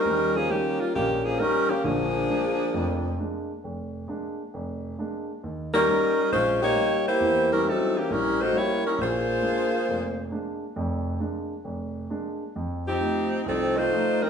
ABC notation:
X:1
M:4/4
L:1/8
Q:"Swing" 1/4=134
K:Eb
V:1 name="Saxophone section"
[G,_DEB] [F,B,DA] [E,B,DG] [G,B,DF] [E,B,DG] [F,B,DA] [G,DEB] [E,B,DG] | [F,B,DA]6 z2 | z8 | z [G,_DEB]3 [A,DFc] [B,EG_d]2 [B,=EGc]- |
[B,=EGc] [G,^CEB] [_G,=C_E=A] [=E,B,^C=G] [=G,C=EB] [=A,_E_G=c] [B,=E=G^c] [G,CEB] | [B,FAc]6 z2 | z8 | z [F,CEG]3 [F,CE=A] [=A,EFc]2 [F,CEB] |]
V:2 name="Grand piano" clef=bass
[E,,G,]2 [G,_DE] z B,,,2 [G,DE] z | [B,,,D,]2 [A,B,D] z [F,,,F,,]2 [A,B,D] z | F,,,2 [A,B,D] z F,,,2 [A,B,D] z | E,,2 [G,_DE] z B,,,2 [G,DE] z |
[=E,,=E,]2 [G,^C=E] z [B,,,B,,]2 [G,CE] z | B,,,2 [A,B,D] z F,,,2 [A,B,D] z | [F,,,F,,]2 [A,B,D] z F,,,2 [A,B,D] z | F,,2 [F,=A,E] z C,,2 [F,A,E] z |]